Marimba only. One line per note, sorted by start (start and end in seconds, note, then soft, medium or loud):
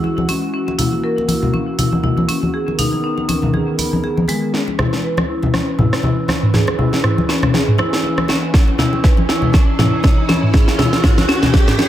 0.04 0.16 E4 medium
0.29 0.36 C#4 medium
0.54 0.66 C#4 medium
0.79 0.86 E4 loud
1.04 1.16 A#4 loud
1.29 1.36 E4 medium
1.54 1.66 C#4 medium
1.79 1.86 E4 loud
2.04 2.16 E4 medium
2.29 2.36 C#4 medium
2.54 2.67 G#4 medium
2.79 2.86 D#4 medium
3.04 3.16 D#4 medium
3.29 3.36 C#4 loud
3.54 3.67 G#4 medium
3.79 3.91 B3 medium
4.04 4.16 G#4 medium
4.28 4.42 G#3 medium
4.54 4.66 C#4 medium
4.79 4.86 E4 loud
5.04 5.16 B4 loud
5.29 5.36 E4 medium
5.54 5.66 C#4 medium
5.79 5.86 E4 loud
6.04 6.16 E4 medium
6.29 6.36 C#4 medium
6.54 6.67 G#4 medium
6.79 6.86 E4 medium
7.04 7.16 E4 medium
7.29 7.36 C#4 loud
7.54 7.67 G#4 medium
7.79 7.86 E4 loud
8.04 8.16 E4 medium
8.29 8.36 C#4 loud
8.54 8.66 C#4 medium
8.79 8.86 E4 loud
9.04 9.16 B4 loud
9.29 9.36 E4 loud
9.54 9.66 C#4 medium
9.79 9.86 E4 loud
10.04 10.16 E4 medium
10.29 10.36 C#4 loud
10.54 10.67 G#4 medium
10.79 10.86 E4 loud
11.04 11.16 E4 medium
11.29 11.36 C#4 loud
11.54 11.67 G#4 medium
11.79 11.88 C#5 medium